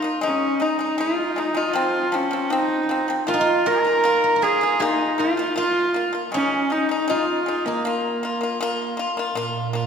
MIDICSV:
0, 0, Header, 1, 5, 480
1, 0, Start_track
1, 0, Tempo, 762389
1, 144, Time_signature, 4, 2, 24, 8
1, 6211, End_track
2, 0, Start_track
2, 0, Title_t, "Guzheng"
2, 0, Program_c, 0, 107
2, 2065, Note_on_c, 0, 65, 91
2, 2101, Note_on_c, 0, 63, 76
2, 2143, Note_off_c, 0, 65, 0
2, 2145, Note_on_c, 0, 65, 86
2, 2305, Note_on_c, 0, 70, 87
2, 2665, Note_off_c, 0, 70, 0
2, 2668, Note_on_c, 0, 70, 75
2, 2743, Note_off_c, 0, 70, 0
2, 2745, Note_on_c, 0, 70, 63
2, 2784, Note_on_c, 0, 68, 78
2, 3017, Note_off_c, 0, 63, 0
2, 3020, Note_on_c, 0, 63, 75
2, 3267, Note_off_c, 0, 65, 0
2, 3270, Note_on_c, 0, 65, 65
2, 3509, Note_off_c, 0, 65, 0
2, 3512, Note_on_c, 0, 65, 71
2, 3993, Note_on_c, 0, 61, 76
2, 4081, Note_off_c, 0, 70, 0
2, 4218, Note_off_c, 0, 68, 0
2, 4471, Note_off_c, 0, 65, 0
2, 4473, Note_on_c, 0, 65, 68
2, 4723, Note_off_c, 0, 63, 0
2, 4829, Note_on_c, 0, 58, 55
2, 5822, Note_off_c, 0, 61, 0
2, 6061, Note_off_c, 0, 65, 0
2, 6211, Note_off_c, 0, 58, 0
2, 6211, End_track
3, 0, Start_track
3, 0, Title_t, "Horsehead fiddle"
3, 0, Program_c, 1, 110
3, 150, Note_on_c, 1, 61, 89
3, 384, Note_on_c, 1, 63, 80
3, 393, Note_off_c, 1, 61, 0
3, 631, Note_on_c, 1, 65, 84
3, 640, Note_off_c, 1, 63, 0
3, 876, Note_on_c, 1, 63, 88
3, 885, Note_off_c, 1, 65, 0
3, 991, Note_on_c, 1, 65, 87
3, 1000, Note_off_c, 1, 63, 0
3, 1350, Note_on_c, 1, 61, 83
3, 1360, Note_off_c, 1, 65, 0
3, 1578, Note_on_c, 1, 63, 98
3, 1587, Note_off_c, 1, 61, 0
3, 1938, Note_off_c, 1, 63, 0
3, 2064, Note_on_c, 1, 65, 100
3, 2310, Note_on_c, 1, 70, 97
3, 2320, Note_off_c, 1, 65, 0
3, 2788, Note_on_c, 1, 68, 88
3, 2798, Note_off_c, 1, 70, 0
3, 3028, Note_on_c, 1, 63, 99
3, 3037, Note_off_c, 1, 68, 0
3, 3267, Note_on_c, 1, 65, 87
3, 3276, Note_off_c, 1, 63, 0
3, 3501, Note_off_c, 1, 65, 0
3, 3504, Note_on_c, 1, 65, 100
3, 3838, Note_off_c, 1, 65, 0
3, 3980, Note_on_c, 1, 61, 91
3, 4231, Note_on_c, 1, 63, 85
3, 4240, Note_off_c, 1, 61, 0
3, 4467, Note_on_c, 1, 65, 77
3, 4477, Note_off_c, 1, 63, 0
3, 4821, Note_on_c, 1, 58, 67
3, 4831, Note_off_c, 1, 65, 0
3, 5665, Note_off_c, 1, 58, 0
3, 6211, End_track
4, 0, Start_track
4, 0, Title_t, "Pipa"
4, 0, Program_c, 2, 105
4, 14, Note_on_c, 2, 58, 67
4, 27, Note_on_c, 2, 65, 75
4, 115, Note_off_c, 2, 58, 0
4, 121, Note_off_c, 2, 65, 0
4, 134, Note_on_c, 2, 56, 85
4, 146, Note_on_c, 2, 63, 86
4, 330, Note_off_c, 2, 56, 0
4, 336, Note_off_c, 2, 63, 0
4, 376, Note_on_c, 2, 56, 72
4, 389, Note_on_c, 2, 63, 74
4, 475, Note_off_c, 2, 56, 0
4, 481, Note_off_c, 2, 63, 0
4, 496, Note_on_c, 2, 56, 64
4, 507, Note_on_c, 2, 63, 72
4, 595, Note_off_c, 2, 56, 0
4, 600, Note_off_c, 2, 63, 0
4, 616, Note_on_c, 2, 56, 90
4, 633, Note_on_c, 2, 63, 90
4, 810, Note_off_c, 2, 56, 0
4, 818, Note_off_c, 2, 63, 0
4, 857, Note_on_c, 2, 56, 66
4, 867, Note_on_c, 2, 63, 70
4, 954, Note_off_c, 2, 56, 0
4, 960, Note_off_c, 2, 63, 0
4, 973, Note_on_c, 2, 56, 74
4, 987, Note_on_c, 2, 63, 80
4, 1072, Note_off_c, 2, 56, 0
4, 1079, Note_off_c, 2, 63, 0
4, 1092, Note_on_c, 2, 53, 85
4, 1105, Note_on_c, 2, 60, 99
4, 1287, Note_off_c, 2, 53, 0
4, 1294, Note_off_c, 2, 60, 0
4, 1334, Note_on_c, 2, 53, 71
4, 1345, Note_on_c, 2, 60, 82
4, 1433, Note_off_c, 2, 53, 0
4, 1438, Note_off_c, 2, 60, 0
4, 1452, Note_on_c, 2, 53, 69
4, 1467, Note_on_c, 2, 60, 77
4, 1552, Note_off_c, 2, 53, 0
4, 1559, Note_off_c, 2, 60, 0
4, 1575, Note_on_c, 2, 53, 86
4, 1590, Note_on_c, 2, 60, 101
4, 1769, Note_off_c, 2, 53, 0
4, 1776, Note_off_c, 2, 60, 0
4, 1820, Note_on_c, 2, 53, 68
4, 1832, Note_on_c, 2, 60, 76
4, 1915, Note_off_c, 2, 53, 0
4, 1921, Note_off_c, 2, 60, 0
4, 1939, Note_on_c, 2, 53, 65
4, 1951, Note_on_c, 2, 60, 75
4, 2035, Note_off_c, 2, 53, 0
4, 2041, Note_off_c, 2, 60, 0
4, 2057, Note_on_c, 2, 58, 86
4, 2069, Note_on_c, 2, 65, 84
4, 2250, Note_off_c, 2, 58, 0
4, 2256, Note_off_c, 2, 65, 0
4, 2303, Note_on_c, 2, 58, 65
4, 2315, Note_on_c, 2, 65, 77
4, 2397, Note_off_c, 2, 58, 0
4, 2403, Note_off_c, 2, 65, 0
4, 2421, Note_on_c, 2, 58, 70
4, 2434, Note_on_c, 2, 65, 68
4, 2516, Note_off_c, 2, 58, 0
4, 2522, Note_off_c, 2, 65, 0
4, 2541, Note_on_c, 2, 58, 88
4, 2550, Note_on_c, 2, 65, 98
4, 2732, Note_off_c, 2, 58, 0
4, 2736, Note_off_c, 2, 65, 0
4, 2782, Note_on_c, 2, 58, 66
4, 2796, Note_on_c, 2, 65, 73
4, 2877, Note_off_c, 2, 58, 0
4, 2884, Note_off_c, 2, 65, 0
4, 2903, Note_on_c, 2, 58, 77
4, 2916, Note_on_c, 2, 65, 78
4, 2997, Note_off_c, 2, 58, 0
4, 3004, Note_off_c, 2, 65, 0
4, 3023, Note_on_c, 2, 58, 89
4, 3035, Note_on_c, 2, 65, 91
4, 3214, Note_off_c, 2, 58, 0
4, 3219, Note_off_c, 2, 65, 0
4, 3261, Note_on_c, 2, 58, 70
4, 3274, Note_on_c, 2, 65, 70
4, 3356, Note_off_c, 2, 58, 0
4, 3363, Note_off_c, 2, 65, 0
4, 3382, Note_on_c, 2, 58, 74
4, 3393, Note_on_c, 2, 65, 83
4, 3477, Note_off_c, 2, 58, 0
4, 3483, Note_off_c, 2, 65, 0
4, 3498, Note_on_c, 2, 58, 93
4, 3509, Note_on_c, 2, 65, 101
4, 3692, Note_off_c, 2, 58, 0
4, 3697, Note_off_c, 2, 65, 0
4, 3741, Note_on_c, 2, 58, 64
4, 3753, Note_on_c, 2, 65, 70
4, 3837, Note_off_c, 2, 58, 0
4, 3843, Note_off_c, 2, 65, 0
4, 3857, Note_on_c, 2, 58, 67
4, 3869, Note_on_c, 2, 65, 68
4, 3955, Note_off_c, 2, 58, 0
4, 3961, Note_off_c, 2, 65, 0
4, 3977, Note_on_c, 2, 56, 79
4, 3992, Note_on_c, 2, 63, 95
4, 4172, Note_off_c, 2, 56, 0
4, 4179, Note_off_c, 2, 63, 0
4, 4218, Note_on_c, 2, 56, 67
4, 4230, Note_on_c, 2, 63, 71
4, 4316, Note_off_c, 2, 56, 0
4, 4322, Note_off_c, 2, 63, 0
4, 4337, Note_on_c, 2, 56, 65
4, 4352, Note_on_c, 2, 63, 80
4, 4436, Note_off_c, 2, 56, 0
4, 4444, Note_off_c, 2, 63, 0
4, 4455, Note_on_c, 2, 56, 83
4, 4467, Note_on_c, 2, 63, 90
4, 4651, Note_off_c, 2, 56, 0
4, 4657, Note_off_c, 2, 63, 0
4, 4697, Note_on_c, 2, 56, 62
4, 4712, Note_on_c, 2, 63, 73
4, 4797, Note_off_c, 2, 56, 0
4, 4804, Note_off_c, 2, 63, 0
4, 4821, Note_on_c, 2, 56, 74
4, 4834, Note_on_c, 2, 63, 75
4, 4918, Note_off_c, 2, 56, 0
4, 4925, Note_off_c, 2, 63, 0
4, 4942, Note_on_c, 2, 58, 82
4, 4953, Note_on_c, 2, 65, 85
4, 5135, Note_off_c, 2, 58, 0
4, 5141, Note_off_c, 2, 65, 0
4, 5181, Note_on_c, 2, 58, 66
4, 5193, Note_on_c, 2, 65, 67
4, 5279, Note_off_c, 2, 58, 0
4, 5285, Note_off_c, 2, 65, 0
4, 5293, Note_on_c, 2, 58, 69
4, 5310, Note_on_c, 2, 65, 72
4, 5396, Note_off_c, 2, 58, 0
4, 5404, Note_off_c, 2, 65, 0
4, 5418, Note_on_c, 2, 58, 98
4, 5430, Note_on_c, 2, 65, 115
4, 5614, Note_off_c, 2, 58, 0
4, 5620, Note_off_c, 2, 65, 0
4, 5648, Note_on_c, 2, 58, 73
4, 5662, Note_on_c, 2, 65, 84
4, 5753, Note_off_c, 2, 58, 0
4, 5760, Note_off_c, 2, 65, 0
4, 5773, Note_on_c, 2, 58, 74
4, 5787, Note_on_c, 2, 65, 82
4, 5876, Note_off_c, 2, 58, 0
4, 5883, Note_off_c, 2, 65, 0
4, 5889, Note_on_c, 2, 58, 95
4, 5901, Note_on_c, 2, 65, 106
4, 6090, Note_off_c, 2, 58, 0
4, 6096, Note_off_c, 2, 65, 0
4, 6128, Note_on_c, 2, 58, 78
4, 6140, Note_on_c, 2, 65, 81
4, 6211, Note_off_c, 2, 58, 0
4, 6211, Note_off_c, 2, 65, 0
4, 6211, End_track
5, 0, Start_track
5, 0, Title_t, "Cello"
5, 0, Program_c, 3, 42
5, 5903, Note_on_c, 3, 46, 66
5, 6211, Note_off_c, 3, 46, 0
5, 6211, End_track
0, 0, End_of_file